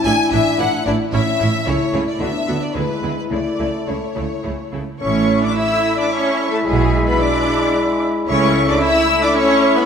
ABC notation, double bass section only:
X:1
M:3/4
L:1/8
Q:1/4=111
K:A
V:1 name="Double bass section" clef=bass
A,,, A,,, A,,, A,,, A,,, A,,, | C,, C,, D,, D,, D,, D,, | C,, C,, C,, C,, C,, C,, | A,,,2 z4 |
B,,,2 z4 | C,,2 z4 |]